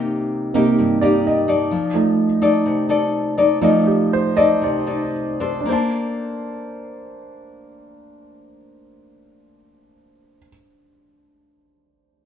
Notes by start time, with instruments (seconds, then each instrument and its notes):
Already playing: grand piano C3 A#3 D#4, nylon-string guitar C3 A#3 D#4 G4
0.54 grand piano C3 A#3 D#4, nylon-string guitar A#3 D#4 G4
0.78 nylon-string guitar G2
1.01 nylon-string guitar A#3 D#4 G4, grand piano D5
1.27 grand piano D#5
1.48 nylon-string guitar D#4 A4 D5
1.71 nylon-string guitar F3
1.94 grand piano F3 A3 D#4
2.42 nylon-string guitar D#4 A4 D5
2.66 nylon-string guitar C3
2.89 nylon-string guitar D#4 A4 D5
3.38 nylon-string guitar D#4 A4 D5
3.61 grand piano F3 A3 D#4 D#5, nylon-string guitar F3 D#4 A4 D5
3.87 grand piano G4
4.13 grand piano C5
4.36 nylon-string guitar D#4 A4 D5, grand piano D#5
4.61 nylon-string guitar C3, grand piano D5
4.87 nylon-string guitar D#4 A4 D5
5.40 nylon-string guitar D4 A4 C5
5.61 grand piano D4
5.66 nylon-string guitar A#3 D4, grand piano C5
5.70 nylon-string guitar A4 C5, grand piano A5